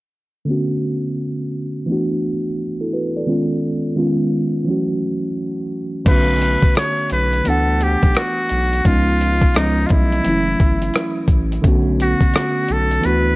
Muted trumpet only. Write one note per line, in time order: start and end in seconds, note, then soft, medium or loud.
6.08 6.73 B4 loud
6.78 7.09 C#5 medium
7.13 7.50 B4 loud
7.48 7.85 A4 loud
7.83 8.19 G4 medium
8.18 8.89 F#4 loud
8.87 9.59 F4 medium
9.57 9.88 D#4 medium
9.87 9.94 F4 soft
9.92 11.30 E4 medium
12.02 12.74 F#4 medium
12.72 13.07 A4 medium
13.06 13.36 B4 medium